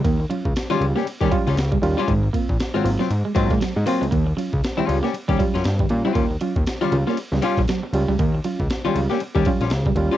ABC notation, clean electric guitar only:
X:1
M:4/4
L:1/16
Q:"Swing 16ths" 1/4=118
K:Ebmix
V:1 name="Clean electric guitar" clef=bass
B, z _G, z2 =G, z B, z G, _G, z2 =G, z G, | A, z B, z2 A, z _G, z A, z A, G, z2 A, | B, z _G, z2 =G, z B, z G, _G, z2 =G, z G, | B, z _G, z2 =G, z B, z G, z _G, G, z2 =G, |
B, z _G, z2 =G, z B, z G, _G, z2 =G, z G, |]